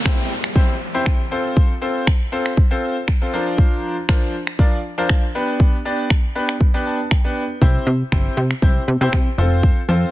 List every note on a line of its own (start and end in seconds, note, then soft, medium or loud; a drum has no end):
0.00 downlifter medium
0.05 0.30 C4 medium
0.05 0.30 E4 medium
0.05 0.30 G4 medium
0.05 0.30 C5 medium
0.05 finger snap loud
0.05 kick loud
0.44 finger snap medium
0.55 0.74 C4 medium
0.55 0.74 E4 medium
0.55 0.74 G4 medium
0.55 0.74 C5 medium
0.55 kick loud
0.94 1.19 C4 medium
0.94 1.19 E4 medium
0.94 1.19 G4 medium
0.94 1.19 C5 medium
1.06 finger snap loud
1.06 kick loud
1.31 1.72 C4 medium
1.31 1.72 F4 medium
1.31 1.72 A4 medium
1.31 1.73 C5 loud
1.57 kick loud
1.82 2.06 C4 medium
1.82 2.06 F4 medium
1.82 2.06 A4 medium
1.82 2.06 C5 medium
2.07 finger snap loud
2.07 kick loud
2.32 2.51 C4 medium
2.32 2.51 F4 medium
2.32 2.51 A4 medium
2.32 2.51 C5 loud
2.46 finger snap medium
2.57 kick loud
2.71 2.95 C4 medium
2.71 2.95 F4 medium
2.71 2.95 A4 medium
2.71 2.95 C5 loud
3.08 finger snap loud
3.08 kick loud
3.22 3.33 C4 medium
3.22 3.32 F4 medium
3.22 3.33 A4 medium
3.22 3.32 C5 medium
3.33 3.94 F3 medium
3.33 3.94 D4 medium
3.33 3.94 F4 medium
3.33 3.95 A#4 medium
3.33 3.95 C5 loud
3.58 kick loud
4.09 4.33 F3 medium
4.09 4.33 D4 medium
4.09 4.33 F4 medium
4.09 4.33 A#4 medium
4.09 4.33 C5 medium
4.09 finger snap loud
4.09 kick loud
4.47 finger snap medium
4.59 4.78 F3 medium
4.59 4.78 D4 medium
4.59 4.78 F4 medium
4.59 4.78 A#4 medium
4.59 4.78 D5 medium
4.59 kick loud
4.98 5.22 F3 medium
4.98 5.22 D4 medium
4.98 5.22 F4 medium
4.98 5.22 A#4 medium
4.98 5.22 C5 loud
5.09 finger snap loud
5.09 kick loud
5.35 5.76 B3 medium
5.35 5.76 D4 medium
5.35 5.76 G4 medium
5.35 5.76 B4 loud
5.60 kick loud
5.85 6.10 B3 medium
5.85 6.10 D4 medium
5.85 6.10 G4 medium
5.85 6.10 D5 medium
6.10 finger snap loud
6.10 kick loud
6.35 6.54 B3 medium
6.35 6.54 D4 medium
6.35 6.54 G4 medium
6.35 6.54 B4 loud
6.49 finger snap medium
6.61 kick loud
6.74 6.98 B3 medium
6.74 6.98 D4 medium
6.74 6.99 G4 medium
6.74 6.99 B4 loud
6.86 7.10 A5 medium
7.11 7.58 G5 medium
7.11 finger snap loud
7.11 kick loud
7.24 7.42 B3 medium
7.24 7.42 D4 medium
7.24 7.42 G4 medium
7.24 7.42 B4 medium
7.62 7.78 C2 loud
7.62 7.86 C4 medium
7.62 7.86 E4 medium
7.62 7.86 G4 medium
7.62 7.86 C5 loud
7.62 kick loud
7.87 8.03 C3 loud
8.12 8.28 G1 loud
8.12 8.36 C4 medium
8.12 8.37 E4 medium
8.12 8.37 G4 medium
8.12 8.37 C5 medium
8.12 finger snap loud
8.12 kick loud
8.37 8.54 C3 loud
8.51 finger snap medium
8.62 8.79 C2 loud
8.62 8.81 C4 medium
8.62 8.81 E4 medium
8.62 8.81 G4 medium
8.62 8.82 C5 medium
8.62 kick loud
8.88 8.96 C3 loud
9.01 9.09 C3 loud
9.01 9.25 C4 medium
9.01 9.25 E4 medium
9.01 9.26 G4 medium
9.01 9.26 C5 loud
9.13 9.29 C3 loud
9.13 finger snap loud
9.13 kick loud
9.38 9.71 F1 loud
9.38 9.79 C4 medium
9.38 9.79 F4 medium
9.38 9.79 A4 medium
9.38 9.79 C5 loud
9.63 kick loud
9.88 10.05 F2 loud
9.88 10.11 C4 medium
9.88 10.11 F4 medium
9.88 10.11 A4 medium
9.88 10.11 C5 medium